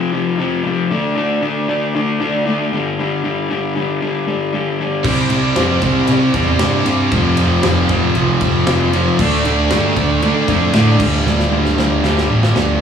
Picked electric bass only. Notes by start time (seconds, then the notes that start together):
5.05 C2
5.31 C2
5.57 F2
5.82 C2
6.09 C3
6.34 E2
6.61 G2
6.87 G2
7.12 F1
7.38 F1
7.64 F1
7.89 F1
8.16 C2
8.41 F1
8.67 F1
9.19 D2
9.45 D2
9.71 G2
9.97 D2
10.23 D3
10.48 F2
10.74 A2
11.00 D2
11.27 D2
11.52 D2
11.78 D2
12.04 D2
12.30 A1
12.57 D2